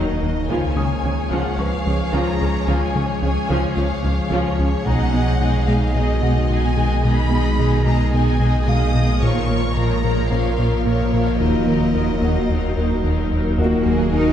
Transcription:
Already playing: D#1 D#2 D#3 F#3 A#3 D#4 A#4 D#5 A#6
0.22 D#2 D#3 F#3 A#3 D#4
0.48 C#2 C#3 F3 G#3 F4 G#4 C#5 G#5
0.76 C#3 F3 G#3 C#4 D#6
1.03 C#2 C#3 F3 G#3 C#4
1.30 C#2 C#3 F3 F4 F#5
1.58 C#2 C#3 F3 C#4 B4 F5 C#6
1.86 C#2 C#3 F3 G#3
2.12 C#2 C#3 F3 F4 A#5
2.40 C#2 C#3 F3 C#4
2.67 C#2 C#3 F3 F4 G#5
2.95 C#3 F3 G#3 C#4
3.22 C#2 C#3 F3 G#3 C#4 G#5
3.49 C#2 C#3 F3 F4
3.76 C#2 C#3 F3 C#4 F5
4.04 C#2 C#3 F3 G#3
4.31 C#2 C#3 F3 F4 C#5
4.59 C#2 C#3 F3 C#4
4.85 B1 B2 D#3 G#3 D#4 G#4 D#5 F#5 A#5
5.12 G#3 B3 D#4 G#4 D#5
5.39 B2 G#3 D#4 G#4 D#5
5.67 B2 G#3 D#4 G#4 D#5 F5
5.94 B2 G#3 B3 D#4 G#4 D#5
6.21 B2 G#3 B3 D#4 F#4 G#4 D#5 F#5
6.48 B2 G#3 D#4 G#4 D#5 G#5
6.76 B2 G#3 D#4 G#4 D#5
7.04 B2 G#3 D#4 G#4 D#5 B5
7.32 G#3 B3 D#4 G#4 D#5
7.59 B2 G#3 D#4 G#4 D#5
7.86 B2 G#3 D#4 G#4 D#5 A#5
8.13 B2 G#3 B3 D#4 G#4 D#5 G#5
8.40 B2 G#3 B3 D#4 G#4 D#5
8.67 B2 G#3 D#4 G#4 D#5 F5 D#6
8.94 B2 G#3 D#4 G#4 D#5
9.21 A#1 A#2 F3 A#3 F4 A#4 C#5 C#6
9.49 F3 A#3 F4 A#4 C#5
9.77 A#2 F3 F4 A#4 C#5 A#5
10.04 A#2 F3 A#3 F4 A#4 C#5
10.30 A#2 F3 C#4 F4 A#4 C#5 F5
10.57 A#2 F3 C#4 F4 A#4 C#5
10.85 A#2 F3 A#3 F4 A#4 C#5
11.13 A#2 F3 F4 A#4 C#5
11.27 F5
11.39 D#1 D#2 D#3 F#3 D#4 A#4 D#5
11.66 D#3 F#3 A#3 D#4 A#4
11.95 D#2 F#3 D#4 A#4
12.21 D#2 D#3 F#3 D#4 F#4 A#4 F#5
12.49 D#2 F#3 D#4 A#4
12.76 D#2 F#3 D#4 A#4
13.03 D#2 D#3 F#3 D#4 A#4
13.31 D#2 F#3 D#4 A#4
13.57 D#1 D#2 A#2 D#3 F#3 A#3 D#4 F#4 A#4 D#5
13.86 D#2 F#3 G#4
14.13 D#2 F#3 D#4 A#4

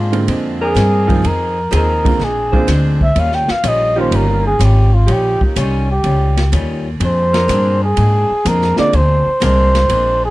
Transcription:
Already playing: G#2 A#2 G#3 C4 D4 F4
0.12 D3 G#3 A#3 C4 F4, ride
0.28 F2 A#2 G#3 C4 D4, kick, ride
0.60 C4 D4 G#4 A#4
0.74 G2 A#2 G#3 C4 D4, kick, snare, hi-hat pedal, ride
1.07 D#3 F3 G#3 C4 F4, kick, ride
1.22 F2 F3 C4 D#4 G#4, kick, ride
1.27 A#4
1.71 D#2 F3 C4 D#4 G#4, kick, hi-hat pedal, ride
1.75 A#4
2.05 D3 G#3 A#3 C4 F4, kick, ride
2.19 A#1 A#2 G#3 C4 D4, kick, snare
2.24 G#4
2.53 D3 G#3 A#3 C4 D4 F4 C5, kick
2.67 D2 A#2 G#3 C4 D4, kick, snare, hi-hat pedal, ride
3.01 E5, kick
3.16 D#2 D#3 G3 C#4 F4, kick, ride
3.20 F5
3.32 G5, snare
3.48 F5, muted upright bass stroke, snare
3.64 A#1 D#3 G3 C#4 F4, kick, hi-hat pedal, ride
3.68 D#5
3.96 D#3 F3 G3 A#3 C#4 D#4 F4 G4 C5
4.11 G1 D#3 G3 C#4 F4, kick, ride
4.16 A#4
4.47 G#4
4.59 G#1 D#3 G3 C#4 F4, kick, hi-hat pedal, ride
4.65 G4
4.94 F4
5.07 A#1 D#3 F3 G3 C#4 D#4 F4 G4, kick, ride
5.12 G4
5.41 A#3, muted upright bass stroke, kick
5.56 C2 D#3 G3 C#4 F4, kick, hi-hat pedal, ride
5.60 C#4
5.91 G4
6.04 C#2 D#3 G3 C#4 F4, kick, ride
6.37 snare, ride
6.52 D#2 D#3 G3 C#4 F4, kick, hi-hat pedal, ride
7.00 F2 A#2 G#3 C4 D4, kick, ride
7.05 C5
7.34 C4 D4 G#4 A#4, snare, ride
7.48 G2 A#2 G#3 C4 D4, kick, hi-hat pedal, ride
7.84 G#4
7.96 G#2 A#2 G#3 C4 D4, kick, ride
8.31 muted upright bass stroke
8.45 F2 A#2 G#3 C4 D4 A#4, kick, hi-hat pedal, ride
8.62 snare
8.77 D3 G#3 A#3 C4 F4 D5, muted upright bass stroke, snare
8.93 D2 A#2 G#3 C4 D4 C5, kick, ride
9.27 muted upright bass stroke
9.40 C2 A#2 G#3 C4 D4 A#4, kick, hi-hat pedal, ride
9.45 C5
9.75 snare, ride
9.89 A#1 A#2 G#3 C4 D4, kick, ride
10.25 G#4

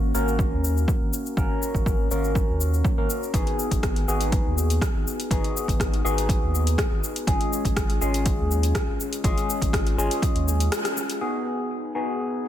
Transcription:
Already playing: G#1 A#3 C#4 F#4 A#4
0.15 G#1 A#3 C#4 F#4 A#4, cabasa
0.28 cabasa
0.39 kick, cabasa
0.52 D#2
0.64 cabasa
0.77 cabasa
0.88 kick, cabasa
1.01 G#1
1.13 cabasa
1.26 cabasa
1.37 G#1 A#3 C#4 F#4 A#4, kick, cabasa
1.62 cabasa
1.75 G#1, kick, cabasa
1.86 kick, cabasa
2.11 G#1 A#3 C#4 F#4 A#4, cabasa
2.24 cabasa
2.35 kick, cabasa
2.48 D#2
2.61 cabasa
2.74 cabasa
2.85 kick, cabasa
2.98 G#1 A#3 C#4 F#4 A#4
3.10 cabasa
3.23 cabasa
3.34 G#1 B3 D#4 F#4 G#4, kick, closed hi-hat, cabasa
3.47 closed hi-hat
3.59 cabasa
3.71 G#1, kick, closed hi-hat, cabasa
3.83 kick, cross-stick, closed hi-hat, cabasa
3.96 closed hi-hat
4.08 G#1 B3 D#4 F#4 G#4, cabasa
4.21 closed hi-hat, cabasa
4.32 kick, closed hi-hat, cabasa
4.46 D#2
4.58 cabasa
4.70 closed hi-hat, cabasa
4.82 kick, cross-stick, closed hi-hat, cabasa
4.95 G#1
5.07 cabasa
5.20 closed hi-hat, cabasa
5.31 G#1 B3 D#4 F#4 G#4, kick, closed hi-hat, cabasa
5.44 closed hi-hat
5.57 cabasa
5.68 G#1, kick, closed hi-hat, cabasa
5.80 kick, cross-stick, closed hi-hat, cabasa
5.94 closed hi-hat
6.05 G#1 B3 D#4 F#4 G#4, cabasa
6.18 closed hi-hat, cabasa
6.29 kick, closed hi-hat, cabasa
6.42 D#2
6.55 cabasa
6.67 closed hi-hat, cabasa
6.78 kick, cross-stick, closed hi-hat, cabasa
6.91 G#1
7.04 cabasa
7.16 closed hi-hat, cabasa
7.27 G#1 G#3 C#4 F4 G#4, kick, closed hi-hat, cabasa
7.41 closed hi-hat
7.53 cabasa
7.65 G#1, kick, closed hi-hat, cabasa
7.76 kick, cross-stick, closed hi-hat, cabasa
7.90 closed hi-hat
8.01 G#1 G#3 C#4 F4 G#4, cabasa
8.14 closed hi-hat, cabasa
8.26 kick, closed hi-hat, cabasa
8.39 D#2
8.51 cabasa
8.63 closed hi-hat, cabasa
8.75 kick, cross-stick, closed hi-hat, cabasa
8.88 G#1
9.00 cabasa
9.13 closed hi-hat, cabasa
9.24 G#1 G#3 C#4 F4 G#4, kick, closed hi-hat, cabasa
9.38 closed hi-hat, cabasa
9.50 cabasa
9.62 G#1, kick, closed hi-hat, cabasa
9.73 kick, cross-stick, closed hi-hat, cabasa
9.87 closed hi-hat
9.98 G#1 G#3 C#4 F4 G#4, cabasa
10.11 closed hi-hat, cabasa
10.22 kick, closed hi-hat, cabasa
10.35 D#2, closed hi-hat
10.48 cabasa
10.60 closed hi-hat, cabasa
10.72 cross-stick, closed hi-hat, cabasa
10.85 cross-stick, closed hi-hat, cabasa
10.97 cabasa
11.10 closed hi-hat, cabasa
11.21 B3 D#4 F#4 G#4, cabasa
11.46 cabasa
11.60 cabasa
11.71 cabasa
11.95 B3 D#4 F#4 G#4, cabasa
12.09 cabasa
12.21 cabasa
12.45 cabasa

